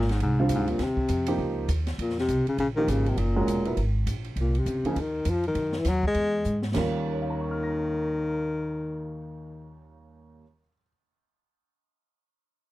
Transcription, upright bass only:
0.00 0.19 G#1 medium
0.20 0.49 C2 medium
0.50 0.78 D2 medium
0.79 0.96 D#2 medium
0.96 muted upright bass stroke soft
1.09 1.38 F2 medium
1.38 1.68 C#2 medium
1.68 1.98 D#2 medium
1.98 2.28 F2 medium
2.28 2.46 C2 medium
2.47 muted upright bass stroke soft
2.58 2.87 A#1 medium
2.88 3.17 G#1 medium
3.17 3.46 F#1 medium
3.47 3.76 E1 medium
3.77 4.06 G#1 medium
4.06 4.35 A#1 medium
4.36 4.65 C2 medium
4.66 4.83 C#2 medium
4.83 muted upright bass stroke soft
4.96 5.25 D#2 medium
5.25 5.54 F2 medium
5.55 5.84 F#2 medium
5.85 6.14 D#2 medium
6.15 6.44 E2 medium
6.45 6.74 G#2 medium
6.76 10.38 D#2 medium

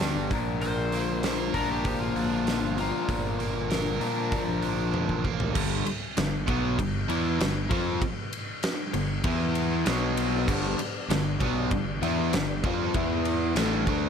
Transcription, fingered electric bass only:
0.00 0.14 D2 medium
0.15 0.30 G1 medium
0.31 1.50 A#1 medium
1.55 1.98 A#1 medium
1.99 2.14 A#1 medium
2.15 2.59 A#1 medium
2.61 2.91 G1 medium
3.09 3.97 G1 medium
4.01 4.30 A#2 medium
4.48 4.91 A#1 medium
4.93 5.08 F2 medium
5.10 5.53 A1 medium
5.56 5.84 G1 medium
5.87 muted fingered electric bass stroke soft
6.17 6.46 G1 medium
6.48 6.77 B1 loud
6.79 7.08 G1 medium
7.09 7.38 E2 loud
7.40 7.69 G1 medium
7.71 8.00 F2 loud
8.94 9.23 G1 medium
9.25 9.82 E2 medium
9.87 10.44 B1 medium
10.48 10.77 G1 loud
10.79 muted fingered electric bass stroke soft
11.08 11.38 G1 medium
11.41 11.69 B1 medium
11.71 12.00 G1 medium
12.02 12.31 E2 loud
12.32 12.61 G1 medium
12.63 12.92 F2 loud
12.95 13.52 E2 loud
13.55 13.84 A1 medium
13.87 14.09 D2 medium

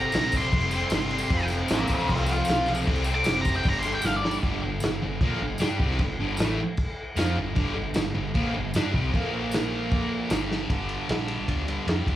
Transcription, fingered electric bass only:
0.14 0.45 A#1 medium
0.53 0.84 F1 loud
0.90 1.22 G1 loud
1.31 1.62 F1 medium
1.70 1.86 A1 medium
1.89 2.05 A#1 medium
2.09 2.40 C2 loud
2.48 2.80 B1 loud
2.87 3.18 C2 loud
3.28 3.58 F#1 medium
3.65 3.97 G1 medium
4.04 4.36 G1 loud
4.43 4.61 G1 medium
4.64 4.82 G1 medium
4.84 5.02 G1 medium
5.03 5.20 G1 medium
5.21 5.39 A#1 loud
5.40 5.59 G1 medium
5.60 5.79 G2 medium
5.80 5.98 C2 loud
6.00 6.17 G1 medium
6.18 6.37 G1 loud
6.38 6.57 A1 medium
7.16 7.35 F2 loud
7.37 7.55 G1 medium
7.56 7.75 G1 loud
7.76 7.95 G1 medium
7.96 8.15 G1 medium
8.15 8.34 G1 medium
8.36 8.53 A#1 loud
8.54 8.73 G1 medium
8.75 8.93 G2 medium
8.93 9.12 C2 medium
9.14 10.27 A#1 loud
10.31 10.67 G1 loud
10.70 10.97 G1 medium
11.09 11.36 A#1 medium
11.48 11.75 D2 loud
11.87 12.01 F2 loud
12.07 12.16 D2 medium

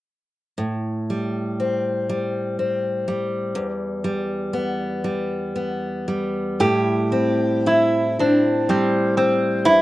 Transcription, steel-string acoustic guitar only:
0.58 3.55 A2 soft
1.10 2.09 G3 soft
1.60 2.58 C4 soft
2.09 3.07 G3 soft
2.59 3.65 C4 soft
3.08 4.04 G3 soft
3.55 6.59 E2 medium
4.04 5.04 G3 soft
4.53 5.54 B3 soft
5.04 6.07 G3 soft
5.56 6.70 B3 soft
6.08 8.69 G3 soft
6.60 9.66 A2 medium
6.60 7.66 E4 soft
7.12 8.18 C4 soft
7.66 9.66 E4 soft
8.19 9.16 C4 soft
8.69 9.82 G3 soft
9.18 9.76 C4 soft
9.65 9.82 E2 medium
9.65 9.82 E4 medium

